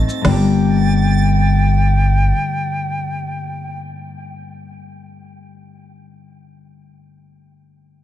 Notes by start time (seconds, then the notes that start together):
Already playing: A3 D#4 A6
0.08 C4, shaker
0.21 G1 G2 D3 G5, snare, crash
0.26 G3 A#3 D4
0.32 G4